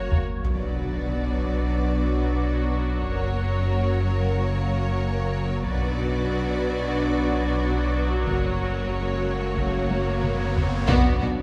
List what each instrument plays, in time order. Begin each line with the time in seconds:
Already playing: sub bass F#1, analog synth pad F#3 A#3 F#4 C#5, viola section F#4, violin section A#4 C#5
0.11 taiko low
0.43 double bass section B1, sub bass B1, cello section B2, viola section F#3 F#4, analog synth pad F#3 B3 F#4 D5, french horn section B3 D4, violin section B4 D5, taiko, impact
1.42 taiko
3.05 sub bass F#1, double bass section F#1, cello section F#2, french horn section A#3 C#4, analog synth pad A#3 C#5, violin section A#4 C#5
5.66 sub bass B1, double bass section B1, cello section B2, analog synth pad F#3 B3 F#4 D5, viola section F#3 F#4, french horn section B3 D4, violin section B4 D5, taiko, riser
8.27 sub bass F#1, double bass section F#1, cello section F#2, french horn section A#3 C#4, analog synth pad A#3 C#5, violin section A#4 C#5, taiko
9.57 taiko
9.90 taiko high
10.23 taiko mid
10.56 taiko low
10.87 double bass section B1, sub bass B1, cello section B2, french horn section F#3 D4, analog synth pad F#3 B3 F#4 D5, viola section B3, violin section F#4 D5, taiko, sub drop
11.20 double bass section B1, cello section B2, viola section B3, violin section F#4 D5